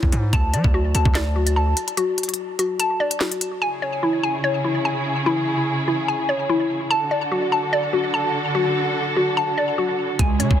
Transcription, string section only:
3.62 C#3 C#4 E4 G#4
6.91 D3 D4 F#4 A4
10.19 C#3 C#4 E4 G#4

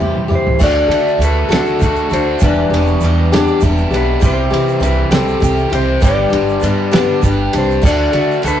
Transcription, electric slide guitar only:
0.35 C5
0.64 D5
1.24 B4
1.53 A4
2.14 C5
2.44 D5
3.96 B4
4.26 C5
4.85 B4
5.14 A4
5.75 C5
6.05 D5
7.58 C5
7.87 D5
8.48 B4

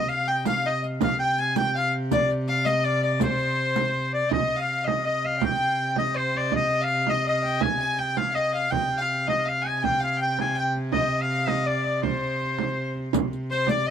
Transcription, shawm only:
Already playing: D#5
0.09 F5
0.28 G5
0.47 F5
0.66 D#5
1.03 F5
1.19 G5
1.39 G#5
1.57 G5
1.77 F5
2.13 D5
2.49 F5
2.66 D#5
2.85 D5
3.03 D5
3.23 C5
4.14 D5
4.32 D#5
4.61 F5
4.87 D#5
5.06 D#5
5.25 F5
5.45 G5
5.99 D#5
6.16 C5
6.37 D5
6.56 D#5
6.84 F5
7.10 D#5
7.29 D#5
7.62 G#5
7.99 G5
8.17 F5
8.35 D#5
8.54 F5
8.71 G5
9.01 F5
9.29 D#5
9.48 F5
9.68 G#5
9.84 G5
10.04 F5
10.22 G5
10.41 G#5
10.58 G5
10.92 D#5
11.22 F5
11.48 D#5
11.67 D5
12.02 C5
13.52 C5
13.70 D5

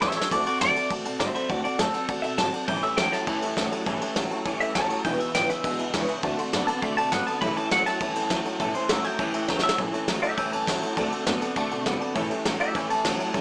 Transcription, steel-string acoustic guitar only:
0.01 A2 E3 G3 C#4 G4 A4
0.16 G3 C#4 G4 A4
0.31 D3 A3 C4 F#4 A4
0.46 C4 F#4 A4
0.61 D3 A3 C4 F#4 A4
0.75 C4 F#4 A4
0.90 A3 C4 F#4 A4
1.05 C4 F#4 A4
1.19 D3 A3 C4 F#4 A4
1.34 C4 F#4 A4
1.49 D3 A3 C4 F#4 A4
1.64 C4 F#4 A4
1.79 D3 A3 C4 F#4 A4
1.93 C4 F#4 A4
2.08 A3 C4 F#4 A4
2.23 C4 F#4 A4
2.38 D3 A3 C4 F#4 A4
2.55 C4 F#4
2.68 A2 E3 G3 C#4 G4 A4
2.82 G3 C#4 G4 A4
2.97 A2 E3 G3 C#4 G4 A4
3.13 G3 C#4 G4 A4
3.27 G3 C#4 G4 A4
3.41 G3 C#4 G4 A4
3.56 A2 E3 G3 C#4 G4 A4
3.71 G3 C#4 G4 A4
3.85 A2 E3 G3 C#4 G4 A4
4.00 G3 C#4 G4 A4
4.15 A2 E3 G3 C#4 G4 A4
4.30 G3 C#4 G4 A4
4.44 G3 C#4 G4 A4
4.60 G3 C#4 G4 A4
4.75 A2 E3 G3 C#4 G4 A4
4.89 G3 C#4 G4 A4
5.05 E3 G#3 D4 E4 B4
5.19 D4 E4 B4
5.34 E3 G#3 D4 E4 B4
5.49 D4 E4 B4
5.63 G#3 D4 E4 B4
5.78 D4 E4 B4
5.93 E3 G#3 D4 E4 B4
6.08 D4 E4 B4
6.22 D3 A3 C4 F#4 A4
6.37 C4 F#4 A4
6.52 D3 A3 C4 F#4 A4
6.67 C4 F#4 A4
6.82 A3 C4 F#4 A4
6.97 C4 F#4 A4
7.11 D3 A3 C4 F#4 A4
7.26 C4 F#4 A4
7.41 A2 E3 G3 C#4 E4 A4
7.56 G3 C#4 E4 A4
7.70 A2 E3 G3 C#4 E4 A4
7.85 G3 C#4 E4 A4
8.00 G3 C#4 E4 A4
8.14 G3 C#4 E4 A4
8.29 A2 E3 G3 C#4 E4 A4
8.44 G3 C#4 E4 A4
8.59 A2 E3 G3 C#4 E4 A4
8.73 G3 C#4 E4 A4
8.88 A2 E3 G3 C#4 E4 A4
9.04 G3 C#4 E4 A4
9.19 G3 C#4 E4 A4
9.33 G3 C#4 E4 A4
9.48 A2 E3 G3 C#4 E4 A4
9.63 G3 C#4 E4 A4
9.79 A2 E3 G3 C#4 E4 A4
9.93 G3 C#4 E4 A4
10.08 A2 E3 G3 C#4 E4 A4
10.23 G3 C#4 E4 A4
10.37 G3 C#4 E4 A4
10.52 G3 C#4 E4 A4
10.67 A2 E3 G3 C#4 E4 A4
10.82 G3 C#4 E4 A4
10.97 D3 A3 C4 F#4 A4
11.12 C4 F#4 A4
11.27 D3 A3 C4 F#4 A4
11.41 C4 F#4 A4
11.55 A3 C4 F#4 A4
11.71 C4 F#4 A4
11.86 D3 A3 C4 F#4 A4
12.00 C4 F#4 A4
12.15 A2 E3 G3 C#4 G4 A4
12.29 G3 C#4 G4 A4
12.44 A2 E3 G3 C#4 G4 A4
12.59 G3 C#4 G4 A4
12.74 G3 C#4 G4 A4
12.89 G3 C#4 G4 A4
13.04 A2 E3 G3 C#4 G4 A4
13.19 G3 C#4 G4 A4
13.34 A2 E3 G3 C#4 G4 A4

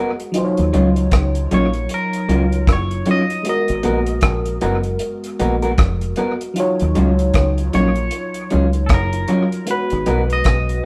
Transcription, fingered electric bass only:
0.59 D#2
0.75 C#2
1.12 C#2
1.52 A#1
2.29 C#2
2.68 F#1
3.70 G#1
3.85 A#1
4.23 A#1
4.63 F#1
5.41 A#1
5.79 F1
6.82 D#2
6.97 C#2
7.35 C#2
7.75 A#1
8.54 C#2
8.90 F#1
9.92 G#1
10.08 B1
10.46 B1

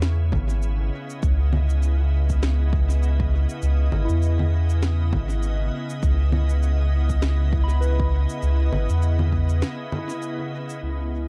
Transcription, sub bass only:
Already playing: E2
0.33 G#1
1.23 C#2
3.62 C#2
3.92 G#1
4.09 E2
5.13 G#1
6.03 C#2
8.43 C#2
8.72 G#1
8.89 E2
10.82 C#2

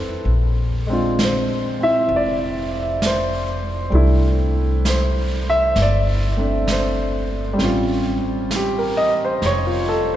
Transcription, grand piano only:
Already playing: G3 A3 C4 D4 E4 A4 B4 C5
0.87 G#3 C4 D4
0.93 F4
1.24 C5
1.80 C4 E4 E5
2.16 D5
3.06 C5
3.90 G3 A3 D4
3.95 E4
4.89 C5
5.50 E5
5.82 D5
6.36 A3 C4 D4
6.72 C5
7.53 G3
7.57 C4 C#4
7.64 F4
8.56 G4
8.78 A#4
8.97 D#5
9.25 C5
9.46 C#5
9.67 F4
9.89 A4

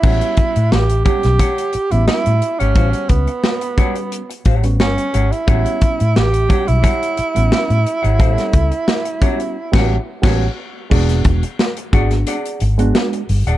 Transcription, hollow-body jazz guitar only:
0.03 G4 C#5 F#5
0.56 muted hollow-body jazz guitar stroke
0.89 muted hollow-body jazz guitar stroke
1.05 G4 C#5 F#5
1.39 G4 C#5 F#5
1.73 muted hollow-body jazz guitar stroke
1.92 muted hollow-body jazz guitar stroke
2.08 muted hollow-body jazz guitar stroke
2.26 muted hollow-body jazz guitar stroke
2.60 G4 C#5 F#5
2.76 F#4 C5 F5
2.89 G4 C#5 F#5
3.28 muted hollow-body jazz guitar stroke
3.62 muted hollow-body jazz guitar stroke
3.78 G4 C#5 F#5
3.96 muted hollow-body jazz guitar stroke
4.30 muted hollow-body jazz guitar stroke
4.46 G4 C#5 F#5
4.64 muted hollow-body jazz guitar stroke
4.80 muted hollow-body jazz guitar stroke
4.97 muted hollow-body jazz guitar stroke
5.14 G4 C#5 F#5
5.32 muted hollow-body jazz guitar stroke
5.47 G4 C#5 F#5
5.99 muted hollow-body jazz guitar stroke
6.32 muted hollow-body jazz guitar stroke
6.49 G4 C#5 F#5
6.67 muted hollow-body jazz guitar stroke
6.82 G4 C#5 F#5
7.17 muted hollow-body jazz guitar stroke
7.35 muted hollow-body jazz guitar stroke
7.51 muted hollow-body jazz guitar stroke
7.69 muted hollow-body jazz guitar stroke
8.03 G4 C#5 F#5
8.19 F#4 C5 F5
8.32 G4 C#5 F#5
8.72 muted hollow-body jazz guitar stroke
9.05 muted hollow-body jazz guitar stroke
9.22 G4 C#5 F#5
9.40 muted hollow-body jazz guitar stroke
9.74 G4 C#5 F#5
10.24 G4 C#5 F#5
10.92 G#4 D5 F#5
11.44 muted hollow-body jazz guitar stroke
11.78 muted hollow-body jazz guitar stroke
11.94 G#4 D5 F#5
12.11 muted hollow-body jazz guitar stroke
12.27 G#4 D5 F#5
12.61 muted hollow-body jazz guitar stroke
12.79 muted hollow-body jazz guitar stroke
12.95 muted hollow-body jazz guitar stroke
13.14 muted hollow-body jazz guitar stroke
13.47 G#4 D5 F#5

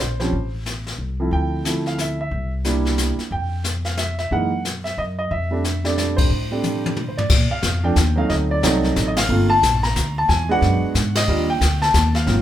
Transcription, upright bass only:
0.00 A#1
0.33 A1
0.98 C2
1.31 D2
2.31 C2
3.17 muted upright bass stroke
3.31 F2
4.31 F#2
4.97 F#2
5.31 F2
6.30 A2
7.30 A#2
7.50 muted upright bass stroke
7.63 F2
7.96 D#2
8.29 D2
8.63 C2
8.96 A1
9.29 G1
9.63 A#1
9.96 D2
10.29 E2
10.61 F#2
10.82 muted upright bass stroke
10.95 G#2
11.28 D#2
11.61 D2
11.94 D#2
12.27 G#1

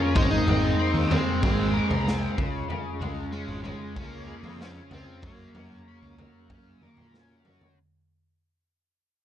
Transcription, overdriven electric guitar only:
Already playing: G#3 C#4 F4 A#4
0.15 G#3
0.46 C4
0.79 C4
1.10 G#3
1.42 C4
1.73 A#4
2.06 C4
2.38 C#3
2.69 C#3
3.01 G#3
3.34 C#4
3.65 G#3
3.96 C#4
4.28 G#4
4.60 C#4
4.92 F4
5.23 F#3
5.55 C#4
5.88 C#4
6.19 F#3
6.50 C#4
6.83 A#4
7.15 C#4
7.46 F#4

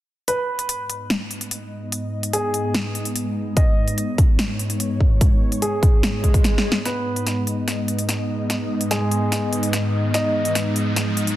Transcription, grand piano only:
0.28 B4
2.33 G#4
3.57 D#5
5.62 G#4
6.85 B3 B4
8.91 G#3 G#4
10.14 D#4 D#5

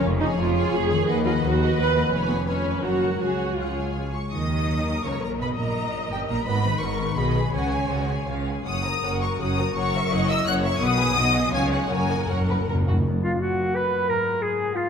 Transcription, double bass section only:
0.03 F1
0.38 F1
0.73 F1
1.07 D#2
1.42 D#2
1.78 D#2
2.13 F1
2.84 F#1
3.22 C#2
4.33 D#2
5.06 C#2
5.23 A#1
5.41 B1
5.59 A#1
6.12 G1
6.30 A#1
6.47 G#1
6.82 G#1
7.18 B1
7.54 C#2
7.92 C#2
8.30 C#2
8.67 F#1
9.04 F#1
9.40 F#1
9.76 F#1
10.11 F#1
10.46 F#1
10.82 B1
11.17 B1
11.54 C#2
11.91 F#1
12.31 F#1
12.70 F#1

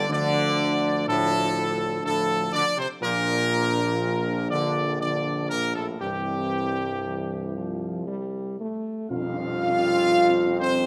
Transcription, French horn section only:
Already playing: G3
0.11 F3 D4
1.07 F3 D4
2.04 F3 D4
3.01 F3 D4
5.00 F3 D4
6.01 E3 C4
7.04 E3
7.54 F3
8.06 G3
8.58 A3
9.10 F4
10.60 C4

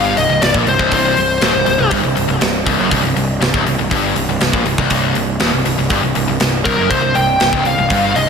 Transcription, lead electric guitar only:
Already playing: F5
0.17 D#5
0.42 D5
0.69 C5
0.94 C5
6.65 A#4
6.90 C5
7.15 G5
7.67 F5
8.16 D#5

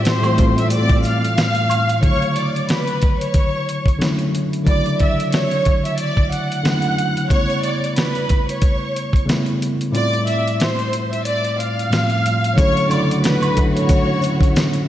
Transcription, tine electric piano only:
Already playing: A2 G3 A3 C4 E4 F4
0.21 A2 E3 G3 A3 C4
0.26 F4
0.37 A2 G3 A3 C4 E4
0.41 F4
2.01 C#3 D3 F3 A3
2.06 F#3 E4
3.99 D3 F#3 A3 C#4
4.03 E4
4.64 C#3 D3 F#3 A3
4.68 E4
6.63 D3 F#3 A3 C#4
6.67 E4
7.29 C#3 G3 A3 B3
7.33 E4
9.25 C#3 G3 A3 B3
9.30 E4
9.92 A2 G3 A3 C4 E4
9.96 F4
11.90 A2 F3 G3 A3 C4
11.94 F4
12.56 D3 F#3 A3 C#4
12.60 E4
12.89 C#3 D3 F#3 A3
12.93 E4
13.54 D3 F#3 A3 C#4
13.59 E4

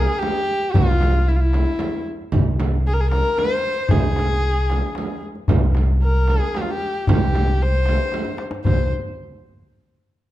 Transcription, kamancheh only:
Already playing: G#4
0.19 G4
0.72 F4
1.28 E4
1.36 F4
1.41 E4
2.87 G#4
2.93 A#4
3.01 G#4
3.11 A#4
3.38 C5
3.91 G#4
6.03 A#4
6.30 G#4
6.57 G4
6.62 F4
6.71 G4
7.11 G4
7.63 C5
8.65 C5

